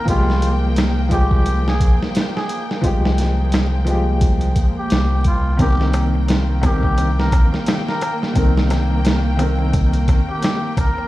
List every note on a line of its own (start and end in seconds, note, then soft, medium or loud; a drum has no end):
0.00 5.58 A#3 medium
0.00 11.08 A#3 medium
0.00 5.58 G5 medium
0.00 11.08 G5 medium
0.05 1.78 C2 loud
0.05 1.07 F3 medium
0.05 1.08 G#3 medium
0.05 0.57 F4 loud
0.05 kick loud
0.05 closed hi-hat medium
0.10 1.09 G4 medium
0.30 snare soft
0.42 closed hi-hat medium
0.76 snare loud
0.76 closed hi-hat medium
1.09 2.79 F3 medium
1.09 2.80 G#3 medium
1.09 1.60 G4 loud
1.09 kick loud
1.09 closed hi-hat medium
1.14 2.82 G5 medium
1.31 kick loud
1.46 closed hi-hat medium
1.68 1.97 G#4 medium
1.68 snare medium
1.80 1.98 A#1 medium
1.80 kick loud
1.80 closed hi-hat medium
2.03 snare soft
2.15 snare loud
2.15 closed hi-hat medium
2.36 2.66 G#4 medium
2.36 snare soft
2.49 closed hi-hat medium
2.71 snare soft
2.81 4.54 C2 loud
2.81 3.83 F3 medium
2.81 3.84 G#3 medium
2.81 kick loud
2.81 closed hi-hat medium
2.86 3.85 G4 medium
3.05 snare medium
3.18 snare soft
3.18 closed hi-hat medium
3.52 snare loud
3.52 closed hi-hat medium
3.85 5.55 F3 medium
3.85 5.56 G#3 medium
3.85 closed hi-hat medium
3.90 5.57 G4 medium
4.21 kick loud
4.21 closed hi-hat medium
4.41 closed hi-hat soft
4.56 kick loud
4.56 closed hi-hat medium
4.78 5.22 G4 medium
4.90 5.57 C2 loud
4.90 snare loud
4.90 closed hi-hat medium
5.24 5.58 F4 medium
5.24 kick medium
5.24 closed hi-hat medium
5.57 7.29 C2 loud
5.57 6.58 D#3 medium
5.57 11.08 A#3 medium
5.57 6.60 C4 medium
5.57 6.09 G4 loud
5.57 11.08 G5 medium
5.57 kick loud
5.57 closed hi-hat medium
5.57 darbuka tek medium
5.62 6.61 A#4 medium
5.80 snare soft
5.80 darbuka tek soft
5.94 closed hi-hat medium
5.94 darbuka tek loud
6.15 darbuka tek soft
6.28 snare loud
6.28 closed hi-hat medium
6.28 darbuka tek medium
6.49 darbuka tek soft
6.61 8.31 D#3 medium
6.61 8.33 C4 medium
6.61 7.13 G4 medium
6.61 kick loud
6.61 closed hi-hat medium
6.61 darbuka tek medium
6.66 8.34 A#4 medium
6.83 kick medium
6.83 darbuka tek soft
6.98 closed hi-hat medium
6.98 darbuka tek medium
7.19 7.49 A#4 medium
7.19 snare medium
7.19 darbuka tek soft
7.32 7.50 A#1 loud
7.32 kick loud
7.32 closed hi-hat medium
7.32 darbuka tek medium
7.53 snare soft
7.53 darbuka tek soft
7.66 snare loud
7.66 closed hi-hat medium
7.66 darbuka tek medium
7.87 8.18 A#4 medium
7.87 snare soft
7.87 darbuka tek soft
8.01 closed hi-hat medium
8.01 darbuka tek loud
8.22 snare soft
8.22 darbuka tek soft
8.33 10.05 C2 loud
8.33 9.34 D#3 medium
8.33 9.36 C4 medium
8.33 kick loud
8.33 closed hi-hat medium
8.33 darbuka tek medium
8.38 9.37 A#4 medium
8.56 snare medium
8.56 darbuka tek soft
8.70 snare soft
8.70 closed hi-hat medium
8.70 darbuka tek medium
8.90 darbuka tek soft
9.05 snare loud
9.05 closed hi-hat medium
9.05 darbuka tek medium
9.25 darbuka tek soft
9.37 11.07 D#3 medium
9.37 11.08 C4 medium
9.37 closed hi-hat medium
9.37 darbuka tek medium
9.42 11.08 A#4 medium
9.59 darbuka tek soft
9.73 kick loud
9.73 closed hi-hat medium
9.73 darbuka tek medium
9.93 closed hi-hat soft
9.93 darbuka tek soft
10.08 kick loud
10.08 closed hi-hat medium
10.08 darbuka tek medium
10.29 10.73 G4 medium
10.29 darbuka tek soft
10.42 snare loud
10.42 closed hi-hat medium
10.42 darbuka tek soft
10.64 darbuka tek soft
10.77 11.08 A#4 medium
10.77 kick medium
10.77 closed hi-hat medium
10.77 darbuka tek medium
10.98 darbuka tek soft